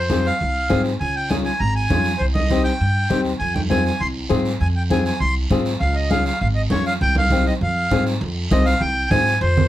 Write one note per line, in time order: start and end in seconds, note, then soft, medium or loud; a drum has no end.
0.00 0.28 F2 medium
0.00 0.26 C5 medium
0.10 0.31 C4 medium
0.10 0.31 F4 medium
0.10 0.32 G#4 medium
0.10 high conga medium
0.10 short guiro medium
0.25 0.82 F5 medium
0.25 short guiro medium
0.40 0.65 C2 medium
0.40 long guiro medium
0.69 0.95 G#2 medium
0.69 0.91 C4 medium
0.69 0.91 F4 medium
0.69 0.91 G#4 medium
0.69 high conga medium
0.69 short guiro medium
0.84 short guiro medium
0.99 1.49 C#2 medium
0.99 1.16 G#5 medium
0.99 long guiro medium
1.16 1.30 G5 medium
1.29 1.51 C#4 medium
1.29 1.51 F4 medium
1.29 1.52 G#4 medium
1.29 1.36 G#5 medium
1.29 high conga medium
1.29 short guiro medium
1.45 1.61 G#5 medium
1.45 short guiro medium
1.60 1.84 G#1 medium
1.60 1.74 A#5 medium
1.60 long guiro medium
1.76 2.22 G#5 medium
1.90 2.14 F2 medium
1.90 2.11 C#4 medium
1.90 2.12 F4 medium
1.90 2.12 G#4 medium
1.90 high conga medium
1.90 short guiro medium
2.04 short guiro medium
2.19 2.68 C2 medium
2.19 2.26 C5 medium
2.19 long guiro medium
2.34 2.63 D#5 medium
2.34 high conga medium
2.50 2.72 C4 medium
2.50 2.72 D#4 medium
2.50 2.72 G4 medium
2.50 high conga medium
2.50 short guiro medium
2.64 3.21 G5 medium
2.64 short guiro medium
2.80 3.05 G2 medium
2.80 long guiro medium
3.10 3.35 D#2 medium
3.10 3.31 C4 medium
3.10 3.31 D#4 medium
3.10 3.31 G4 medium
3.10 high conga medium
3.10 short guiro medium
3.25 short guiro medium
3.39 3.88 F2 medium
3.39 3.54 G#5 medium
3.39 long guiro medium
3.54 3.61 G5 medium
3.54 high conga medium
3.70 3.91 C4 medium
3.70 3.91 F4 medium
3.70 3.91 G#4 medium
3.70 3.84 G#5 medium
3.70 high conga medium
3.70 short guiro medium
3.85 4.01 G#5 medium
3.85 short guiro medium
4.00 4.25 C2 medium
4.00 4.07 C6 medium
4.00 long guiro medium
4.29 4.55 G#2 medium
4.29 4.51 C4 medium
4.29 4.51 F4 medium
4.29 4.51 G#4 medium
4.29 high conga medium
4.29 short guiro medium
4.45 short guiro medium
4.61 5.09 F2 medium
4.61 4.68 G#5 medium
4.61 long guiro medium
4.76 4.83 G5 medium
4.90 5.12 C4 medium
4.90 5.11 F4 medium
4.90 5.12 G#4 medium
4.90 5.04 G#5 medium
4.90 high conga medium
4.90 short guiro medium
5.05 5.20 G#5 medium
5.05 short guiro medium
5.20 5.45 C2 medium
5.20 5.35 C6 medium
5.20 long guiro medium
5.50 5.74 G#2 medium
5.50 5.72 C4 medium
5.50 5.72 F4 medium
5.50 5.72 G#4 medium
5.50 high conga medium
5.50 short guiro medium
5.65 short guiro medium
5.80 6.29 C#2 medium
5.80 5.96 F5 medium
5.80 long guiro medium
5.95 6.10 D#5 medium
6.10 6.32 C#4 medium
6.10 6.32 F4 medium
6.10 6.32 G#4 medium
6.10 6.25 F5 medium
6.10 high conga medium
6.10 short guiro medium
6.25 6.39 F5 medium
6.25 short guiro medium
6.41 6.65 G#1 medium
6.41 6.47 F5 medium
6.41 long guiro medium
6.55 6.62 D#5 medium
6.70 6.95 F2 medium
6.70 6.92 C#4 medium
6.70 6.92 F4 medium
6.70 6.92 G#4 medium
6.70 6.85 C#5 medium
6.70 high conga medium
6.70 short guiro medium
6.86 6.93 F5 medium
6.86 short guiro medium
7.01 7.49 C2 medium
7.01 7.16 G5 loud
7.01 long guiro medium
7.16 7.45 F5 medium
7.16 high conga medium
7.30 7.53 C4 medium
7.30 7.53 D#4 medium
7.30 7.53 G4 medium
7.30 high conga medium
7.30 short guiro medium
7.46 7.54 D#5 medium
7.46 short guiro medium
7.61 7.85 F2 medium
7.61 8.04 F5 medium
7.61 long guiro medium
7.91 8.15 G#2 medium
7.91 8.12 C4 medium
7.91 8.13 F4 medium
7.91 8.13 G#4 medium
7.91 high conga medium
7.91 short guiro medium
8.06 short guiro medium
8.21 8.45 F2 medium
8.21 high conga soft
8.21 long guiro medium
8.51 8.75 C2 medium
8.51 8.73 C4 medium
8.51 8.73 F4 medium
8.51 8.73 G#4 medium
8.51 8.66 D#5 medium
8.51 high conga medium
8.51 short guiro medium
8.66 8.82 F5 medium
8.66 short guiro medium
8.81 9.05 C2 medium
8.81 9.09 G5 medium
8.81 high conga soft
8.81 long guiro medium
9.10 9.35 G#2 medium
9.10 9.33 C4 medium
9.10 9.33 F4 medium
9.10 9.33 G#4 medium
9.10 9.39 G#5 loud
9.10 high conga medium
9.10 short guiro medium
9.27 short guiro medium
9.41 9.66 F2 loud
9.41 9.68 C5 medium
9.41 high conga soft
9.41 long guiro medium
9.57 low conga medium